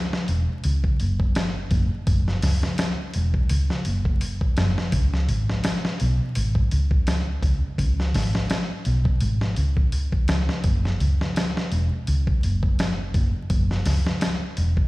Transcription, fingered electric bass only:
0, 0, Header, 1, 2, 480
1, 0, Start_track
1, 0, Tempo, 714286
1, 1393, Time_signature, 4, 2, 24, 8
1, 9999, End_track
2, 0, Start_track
2, 0, Title_t, "Fingered electric bass"
2, 0, Program_c, 0, 33
2, 193, Note_on_c, 0, 28, 86
2, 311, Note_off_c, 0, 28, 0
2, 436, Note_on_c, 0, 37, 88
2, 552, Note_off_c, 0, 37, 0
2, 676, Note_on_c, 0, 30, 74
2, 1134, Note_off_c, 0, 30, 0
2, 1152, Note_on_c, 0, 30, 82
2, 1270, Note_off_c, 0, 30, 0
2, 1394, Note_on_c, 0, 30, 87
2, 1608, Note_off_c, 0, 30, 0
2, 1633, Note_on_c, 0, 37, 99
2, 1751, Note_off_c, 0, 37, 0
2, 2120, Note_on_c, 0, 28, 82
2, 2234, Note_off_c, 0, 28, 0
2, 2358, Note_on_c, 0, 37, 90
2, 2473, Note_off_c, 0, 37, 0
2, 2596, Note_on_c, 0, 30, 77
2, 3054, Note_off_c, 0, 30, 0
2, 3077, Note_on_c, 0, 30, 79
2, 3193, Note_off_c, 0, 30, 0
2, 3314, Note_on_c, 0, 37, 85
2, 3528, Note_off_c, 0, 37, 0
2, 3552, Note_on_c, 0, 32, 98
2, 3670, Note_off_c, 0, 32, 0
2, 4041, Note_on_c, 0, 35, 86
2, 4155, Note_off_c, 0, 35, 0
2, 4278, Note_on_c, 0, 32, 88
2, 4393, Note_off_c, 0, 32, 0
2, 4517, Note_on_c, 0, 37, 74
2, 4975, Note_off_c, 0, 37, 0
2, 4991, Note_on_c, 0, 37, 81
2, 5110, Note_off_c, 0, 37, 0
2, 5234, Note_on_c, 0, 37, 83
2, 5448, Note_off_c, 0, 37, 0
2, 5471, Note_on_c, 0, 32, 98
2, 5590, Note_off_c, 0, 32, 0
2, 5957, Note_on_c, 0, 35, 78
2, 6073, Note_off_c, 0, 35, 0
2, 6194, Note_on_c, 0, 32, 88
2, 6311, Note_off_c, 0, 32, 0
2, 6432, Note_on_c, 0, 37, 71
2, 6892, Note_off_c, 0, 37, 0
2, 6914, Note_on_c, 0, 37, 79
2, 7031, Note_off_c, 0, 37, 0
2, 7155, Note_on_c, 0, 30, 84
2, 7369, Note_off_c, 0, 30, 0
2, 7399, Note_on_c, 0, 37, 95
2, 7514, Note_off_c, 0, 37, 0
2, 7876, Note_on_c, 0, 28, 81
2, 7992, Note_off_c, 0, 28, 0
2, 8118, Note_on_c, 0, 37, 91
2, 8233, Note_off_c, 0, 37, 0
2, 8360, Note_on_c, 0, 30, 77
2, 8816, Note_off_c, 0, 30, 0
2, 8837, Note_on_c, 0, 30, 84
2, 8953, Note_off_c, 0, 30, 0
2, 9074, Note_on_c, 0, 30, 87
2, 9288, Note_off_c, 0, 30, 0
2, 9312, Note_on_c, 0, 37, 97
2, 9430, Note_off_c, 0, 37, 0
2, 9796, Note_on_c, 0, 28, 85
2, 9912, Note_off_c, 0, 28, 0
2, 9999, End_track
0, 0, End_of_file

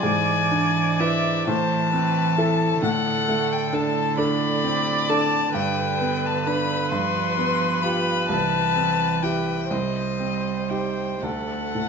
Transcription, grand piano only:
0, 0, Header, 1, 2, 480
1, 0, Start_track
1, 0, Key_signature, 1, "major"
1, 0, Tempo, 955414
1, 13, Time_signature, 6, 3, 24, 8
1, 973, Tempo, 898204
1, 2413, Tempo, 916031
1, 4333, Tempo, 956938
1, 5293, Tempo, 1025641
1, 6078, End_track
2, 0, Start_track
2, 0, Title_t, "Grand piano"
2, 0, Program_c, 0, 0
2, 0, Control_c, 0, 64, 127
2, 15, Note_on_c, 0, 44, 56
2, 23, Control_c, 0, 64, 0
2, 95, Control_c, 0, 64, 127
2, 258, Note_on_c, 0, 62, 39
2, 502, Note_on_c, 0, 64, 45
2, 504, Note_on_c, 0, 71, 47
2, 649, Note_off_c, 0, 62, 0
2, 723, Note_off_c, 0, 64, 0
2, 724, Note_off_c, 0, 44, 0
2, 724, Note_off_c, 0, 71, 0
2, 740, Note_on_c, 0, 45, 59
2, 753, Control_c, 0, 64, 0
2, 844, Control_c, 0, 64, 127
2, 971, Note_on_c, 0, 60, 45
2, 1208, Note_on_c, 0, 64, 42
2, 1211, Note_on_c, 0, 69, 53
2, 1354, Note_off_c, 0, 60, 0
2, 1427, Note_off_c, 0, 64, 0
2, 1428, Note_off_c, 0, 45, 0
2, 1429, Note_off_c, 0, 69, 0
2, 1447, Note_on_c, 0, 45, 60
2, 1461, Control_c, 0, 64, 0
2, 1548, Control_c, 0, 64, 127
2, 1693, Note_on_c, 0, 57, 49
2, 1930, Note_on_c, 0, 62, 46
2, 1934, Note_on_c, 0, 69, 47
2, 2075, Note_off_c, 0, 57, 0
2, 2148, Note_off_c, 0, 62, 0
2, 2150, Note_off_c, 0, 69, 0
2, 2171, Note_on_c, 0, 62, 45
2, 2175, Note_on_c, 0, 69, 50
2, 2391, Note_off_c, 0, 62, 0
2, 2393, Note_off_c, 0, 69, 0
2, 2415, Note_on_c, 0, 60, 46
2, 2655, Note_on_c, 0, 62, 45
2, 2656, Note_on_c, 0, 69, 52
2, 2797, Note_off_c, 0, 60, 0
2, 2868, Note_off_c, 0, 45, 0
2, 2872, Note_off_c, 0, 62, 0
2, 2872, Note_off_c, 0, 69, 0
2, 2892, Note_on_c, 0, 43, 63
2, 2902, Control_c, 0, 64, 0
2, 2982, Control_c, 0, 64, 127
2, 3133, Note_on_c, 0, 59, 49
2, 3374, Note_on_c, 0, 62, 41
2, 3374, Note_on_c, 0, 71, 45
2, 3516, Note_off_c, 0, 59, 0
2, 3591, Note_off_c, 0, 43, 0
2, 3591, Note_off_c, 0, 62, 0
2, 3591, Note_off_c, 0, 71, 0
2, 3611, Note_on_c, 0, 43, 54
2, 3619, Control_c, 0, 64, 0
2, 3711, Control_c, 0, 64, 127
2, 3852, Note_on_c, 0, 59, 44
2, 4092, Note_on_c, 0, 65, 41
2, 4093, Note_on_c, 0, 67, 41
2, 4236, Note_off_c, 0, 59, 0
2, 4310, Note_off_c, 0, 43, 0
2, 4311, Note_off_c, 0, 65, 0
2, 4312, Note_off_c, 0, 67, 0
2, 4329, Note_on_c, 0, 36, 54
2, 4341, Control_c, 0, 64, 0
2, 4413, Control_c, 0, 64, 127
2, 4565, Note_on_c, 0, 60, 36
2, 4802, Note_on_c, 0, 64, 35
2, 4804, Note_on_c, 0, 67, 39
2, 4947, Note_off_c, 0, 60, 0
2, 5023, Note_off_c, 0, 36, 0
2, 5024, Note_off_c, 0, 64, 0
2, 5025, Note_off_c, 0, 67, 0
2, 5040, Note_on_c, 0, 36, 49
2, 5053, Control_c, 0, 64, 0
2, 5138, Control_c, 0, 64, 127
2, 5287, Note_on_c, 0, 60, 36
2, 5525, Note_on_c, 0, 63, 31
2, 5526, Note_on_c, 0, 67, 35
2, 5669, Note_off_c, 0, 60, 0
2, 5748, Note_off_c, 0, 36, 0
2, 5749, Note_off_c, 0, 63, 0
2, 5750, Note_off_c, 0, 67, 0
2, 5768, Note_on_c, 0, 38, 38
2, 5780, Control_c, 0, 64, 0
2, 5872, Control_c, 0, 64, 127
2, 6013, Note_on_c, 0, 45, 29
2, 6078, Note_off_c, 0, 38, 0
2, 6078, Note_off_c, 0, 45, 0
2, 6078, End_track
0, 0, End_of_file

